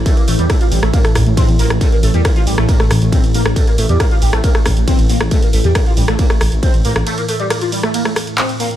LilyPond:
<<
  \new Staff \with { instrumentName = "Analog synth lead" } { \time 4/4 \key c \mixolydian \tempo 4 = 137 a16 bes16 a16 g16 a16 f'16 g16 a16 bes16 a16 r8 c'16 r16 bes16 r16 | a16 bes16 a16 g16 bes16 f'16 g16 a16 bes16 a16 r8 c'16 r16 bes16 r16 | a16 bes16 a16 g16 bes16 f'16 g16 a16 bes16 a16 r8 c'16 r16 bes16 r16 | a16 bes16 a16 g16 bes16 f'16 g16 a16 bes16 a16 r8 c'16 r16 bes16 r16 |
a16 bes16 a16 g16 bes16 f'16 g16 a16 bes16 a16 r8 c'16 r16 bes16 r16 | }
  \new Staff \with { instrumentName = "Ambient pad" } { \clef bass \time 4/4 \key c \mixolydian <a, e>1~ | <a, e>1~ | <a, e>1~ | <a, e>1~ |
<a, e>1 | }
  \new Staff \with { instrumentName = "Detuned saw bass" } { \clef bass \time 4/4 \key c \mixolydian r8 a,,16 e,16 r8 a,,16 a,,16 r8 a,,16 a,16 r16 e,16 a,,16 a,,16 | r8 a,,16 e,16 r8 a,,16 a,,16 r8 a,,16 a,,16 r16 a,,16 a,,16 a,,16 | r8 a,,16 e,16 r8 a,,16 a,,16 r8 a,,16 a,,16 r16 a,,16 a,,16 a,,16 | r8 a,,16 e,16 r8 a,,16 a,,16 r8 a,,16 a,,16 r16 a,,16 a,,16 a,,16 |
r1 | }
  \new DrumStaff \with { instrumentName = "Drums" } \drummode { \time 4/4 <hh bd cymr>16 hh16 hho16 hh16 <hh bd cymr ss>16 hh16 hho16 <hh ss>16 <hh bd cymr>16 <hh ss>16 <hho bd ss>16 hh16 <hh bd cymr>16 hh16 hho16 <hh ss>16 | <hh bd cymr>16 hh16 hho16 hh16 <hh bd cymr ss>16 hh16 hho16 <hh ss>16 <hh bd cymr>16 <hh ss>16 <hho ss>16 hh16 <hh bd cymr>16 hh16 hho16 <hh ss>16 | <hh bd cymr>16 hh16 hho16 hh16 <hh bd cymr ss>16 hh16 hho16 <hh ss>16 <hh bd cymr>16 <hh ss>16 <hho bd ss>16 hh16 <hh bd cymr>16 hh16 hho16 ss16 | <hh bd cymr>16 hh16 hho16 hh16 <hh bd cymr ss>16 hh16 hho16 <hh ss>16 <hh bd cymr>16 <hh ss>16 <hho ss>16 hh16 <hh bd cymr>16 hh16 hho16 <hh ss>16 |
<hh cymr>16 hh16 hho16 hh16 <hh cymr ss>16 hh16 hho16 ss16 <hh cymr>16 <hh ss>16 <hho ss>16 hh16 <hc hh cymr>16 hh16 hho16 hh16 | }
>>